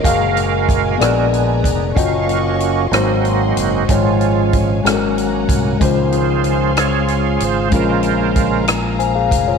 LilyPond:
<<
  \new Staff \with { instrumentName = "String section" } { \time 6/8 \key des \major \tempo 4. = 63 << { <bes' f'' aes''>4. <ces' d'' bes''>4. | <ees'' f'' des'''>4. <ees'' ges'' c'''>4. | <des'' f''>4. ges''4. | f''2.~ |
f''2. | } \\ { ges'4. r4. | des''4. aes''4.~ | aes''4. bes''4. | c'''2. |
bes''2. | } >> }
  \new Staff \with { instrumentName = "Tine electric piano" } { \time 6/8 \key des \major <bes ges' aes' f''>4. <ces' aes' bes' d''>4. | <des' f' ges' ees''>4. <aes ees' ges' c''>4. | <aes des' f' des''>4. <aes des' ges' a' bes'>4. | <aes des' f' c''>2. |
<aes des' f' bes'>2. | }
  \new Staff \with { instrumentName = "Tine electric piano" } { \time 6/8 \key des \major r4. bes,4. | r4. aes,4. | aes,4. aes,4. | des4. r4. |
bes,4. r8 <c'' aes''>16 <aes' f''>8 <f' des''>16 | }
  \new Staff \with { instrumentName = "Tonewheel organ" } { \time 6/8 \key des \major << { bes'2 r4 | r8 ges'4 ges'4. | f'4 r2 | r8 aes'4 des''4 c''8 |
bes'4. r4. | } \\ { ges'2 r4 | r8 <bes des'>4 <c' ees'>4. | des'4. r4. | r8 <des' f'>4 <f' aes'>4. |
<des' f'>4. r4. | } >> }
  \new Staff \with { instrumentName = "Tonewheel organ" } { \time 6/8 \key des \major <aes bes f''>4. <aes ces' d'>4. | <ges des' f''>8 r4 <ges bes>4. | <f aes>4. <ges bes des'>4. | <ees f c''>4. r4. |
<des aes c''>4. r4. | }
  \new Staff \with { instrumentName = "Fingered electric bass" } { \clef bass \time 6/8 \key des \major ges,,4. bes,,4 f,,8 | ges,,4. aes,,4 ges,,8 | aes,,4. aes,,4 c,8 | des,2~ des,8 aes,,8 |
bes,,2~ bes,,8 f,,8 | }
  \new DrumStaff \with { instrumentName = "Drums" } \drummode { \time 6/8 <hh bd>8 hh8 <hh bd>8 <hh ss>8 hh8 <hh bd>8 | <hh bd>8 hh8 hh8 <hh ss>8 hh8 hh8 | <hh bd>8 hh8 <hh bd>8 <hh ss>8 hh8 <hh bd>8 | <hh bd>8 hh8 hh8 <hh ss>8 hh8 hh8 |
<hh bd>8 hh8 <hh bd>8 <hh ss>8 hh8 <hh bd>8 | }
>>